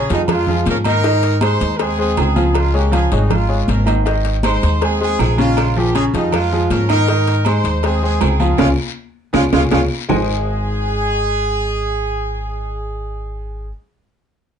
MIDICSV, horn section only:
0, 0, Header, 1, 2, 480
1, 0, Start_track
1, 0, Key_signature, -4, "major"
1, 0, Tempo, 377121
1, 1326, Time_signature, 4, 2, 24, 8
1, 18571, End_track
2, 0, Start_track
2, 0, Title_t, "Horn section"
2, 0, Program_c, 0, 61
2, 168, Note_on_c, 0, 55, 76
2, 169, Note_on_c, 0, 63, 95
2, 267, Note_off_c, 0, 55, 0
2, 267, Note_off_c, 0, 63, 0
2, 403, Note_on_c, 0, 56, 79
2, 411, Note_on_c, 0, 65, 97
2, 832, Note_off_c, 0, 56, 0
2, 836, Note_off_c, 0, 65, 0
2, 877, Note_on_c, 0, 70, 100
2, 879, Note_on_c, 0, 61, 77
2, 978, Note_off_c, 0, 70, 0
2, 979, Note_off_c, 0, 61, 0
2, 1104, Note_on_c, 0, 70, 114
2, 1113, Note_on_c, 0, 63, 85
2, 1766, Note_off_c, 0, 70, 0
2, 1771, Note_off_c, 0, 63, 0
2, 1825, Note_on_c, 0, 72, 107
2, 1837, Note_on_c, 0, 63, 85
2, 2237, Note_off_c, 0, 72, 0
2, 2242, Note_off_c, 0, 63, 0
2, 2253, Note_on_c, 0, 70, 78
2, 2300, Note_off_c, 0, 70, 0
2, 2300, Note_on_c, 0, 68, 100
2, 2316, Note_on_c, 0, 60, 80
2, 2534, Note_off_c, 0, 68, 0
2, 2542, Note_off_c, 0, 60, 0
2, 2555, Note_on_c, 0, 68, 95
2, 2558, Note_on_c, 0, 60, 79
2, 2766, Note_off_c, 0, 68, 0
2, 2767, Note_off_c, 0, 60, 0
2, 2799, Note_on_c, 0, 68, 92
2, 2803, Note_on_c, 0, 60, 75
2, 3231, Note_off_c, 0, 68, 0
2, 3233, Note_off_c, 0, 60, 0
2, 3265, Note_on_c, 0, 65, 95
2, 3270, Note_on_c, 0, 56, 79
2, 3497, Note_off_c, 0, 65, 0
2, 3499, Note_off_c, 0, 56, 0
2, 3511, Note_on_c, 0, 67, 93
2, 3521, Note_on_c, 0, 58, 74
2, 3724, Note_off_c, 0, 67, 0
2, 3729, Note_off_c, 0, 58, 0
2, 3752, Note_on_c, 0, 68, 93
2, 3757, Note_on_c, 0, 61, 74
2, 3964, Note_off_c, 0, 68, 0
2, 3967, Note_off_c, 0, 61, 0
2, 3990, Note_on_c, 0, 63, 86
2, 3999, Note_on_c, 0, 55, 69
2, 4219, Note_off_c, 0, 63, 0
2, 4224, Note_off_c, 0, 55, 0
2, 4233, Note_on_c, 0, 65, 93
2, 4240, Note_on_c, 0, 56, 75
2, 4669, Note_off_c, 0, 65, 0
2, 4672, Note_off_c, 0, 56, 0
2, 4713, Note_on_c, 0, 70, 80
2, 4723, Note_on_c, 0, 61, 68
2, 4925, Note_off_c, 0, 70, 0
2, 4930, Note_off_c, 0, 61, 0
2, 5655, Note_on_c, 0, 72, 105
2, 5667, Note_on_c, 0, 63, 88
2, 6099, Note_off_c, 0, 72, 0
2, 6105, Note_off_c, 0, 63, 0
2, 6150, Note_on_c, 0, 68, 102
2, 6156, Note_on_c, 0, 60, 80
2, 6374, Note_off_c, 0, 68, 0
2, 6383, Note_off_c, 0, 60, 0
2, 6390, Note_on_c, 0, 68, 109
2, 6399, Note_on_c, 0, 60, 78
2, 6604, Note_off_c, 0, 68, 0
2, 6609, Note_off_c, 0, 60, 0
2, 6630, Note_on_c, 0, 68, 99
2, 6638, Note_on_c, 0, 60, 75
2, 6844, Note_off_c, 0, 68, 0
2, 6848, Note_off_c, 0, 60, 0
2, 6870, Note_on_c, 0, 65, 107
2, 6881, Note_on_c, 0, 56, 82
2, 7307, Note_off_c, 0, 65, 0
2, 7313, Note_off_c, 0, 56, 0
2, 7350, Note_on_c, 0, 67, 95
2, 7357, Note_on_c, 0, 58, 73
2, 7580, Note_off_c, 0, 67, 0
2, 7581, Note_on_c, 0, 68, 98
2, 7583, Note_on_c, 0, 61, 74
2, 7584, Note_off_c, 0, 58, 0
2, 7686, Note_off_c, 0, 68, 0
2, 7688, Note_off_c, 0, 61, 0
2, 7836, Note_on_c, 0, 63, 94
2, 7849, Note_on_c, 0, 55, 79
2, 8047, Note_off_c, 0, 63, 0
2, 8054, Note_off_c, 0, 55, 0
2, 8068, Note_on_c, 0, 65, 99
2, 8076, Note_on_c, 0, 56, 75
2, 8506, Note_off_c, 0, 65, 0
2, 8510, Note_off_c, 0, 56, 0
2, 8538, Note_on_c, 0, 70, 98
2, 8546, Note_on_c, 0, 61, 80
2, 8758, Note_off_c, 0, 70, 0
2, 8762, Note_off_c, 0, 61, 0
2, 8786, Note_on_c, 0, 70, 118
2, 8796, Note_on_c, 0, 63, 90
2, 9448, Note_off_c, 0, 70, 0
2, 9453, Note_off_c, 0, 63, 0
2, 9509, Note_on_c, 0, 72, 100
2, 9513, Note_on_c, 0, 63, 78
2, 9979, Note_off_c, 0, 72, 0
2, 9981, Note_off_c, 0, 63, 0
2, 9991, Note_on_c, 0, 60, 80
2, 9993, Note_on_c, 0, 68, 93
2, 10204, Note_off_c, 0, 60, 0
2, 10205, Note_off_c, 0, 68, 0
2, 10233, Note_on_c, 0, 60, 77
2, 10236, Note_on_c, 0, 68, 104
2, 10445, Note_off_c, 0, 60, 0
2, 10446, Note_off_c, 0, 68, 0
2, 10462, Note_on_c, 0, 68, 92
2, 10465, Note_on_c, 0, 60, 76
2, 10902, Note_off_c, 0, 68, 0
2, 10903, Note_off_c, 0, 60, 0
2, 10938, Note_on_c, 0, 65, 104
2, 10939, Note_on_c, 0, 61, 94
2, 10946, Note_on_c, 0, 56, 102
2, 11050, Note_off_c, 0, 65, 0
2, 11051, Note_off_c, 0, 61, 0
2, 11056, Note_off_c, 0, 56, 0
2, 11901, Note_on_c, 0, 56, 99
2, 11902, Note_on_c, 0, 61, 100
2, 11903, Note_on_c, 0, 65, 98
2, 12012, Note_off_c, 0, 56, 0
2, 12013, Note_off_c, 0, 61, 0
2, 12013, Note_off_c, 0, 65, 0
2, 12136, Note_on_c, 0, 65, 106
2, 12139, Note_on_c, 0, 56, 109
2, 12143, Note_on_c, 0, 61, 107
2, 12249, Note_off_c, 0, 65, 0
2, 12251, Note_off_c, 0, 56, 0
2, 12254, Note_off_c, 0, 61, 0
2, 12377, Note_on_c, 0, 65, 97
2, 12378, Note_on_c, 0, 56, 93
2, 12383, Note_on_c, 0, 61, 102
2, 12489, Note_off_c, 0, 65, 0
2, 12490, Note_off_c, 0, 56, 0
2, 12493, Note_off_c, 0, 61, 0
2, 12871, Note_on_c, 0, 68, 106
2, 17458, Note_off_c, 0, 68, 0
2, 18571, End_track
0, 0, End_of_file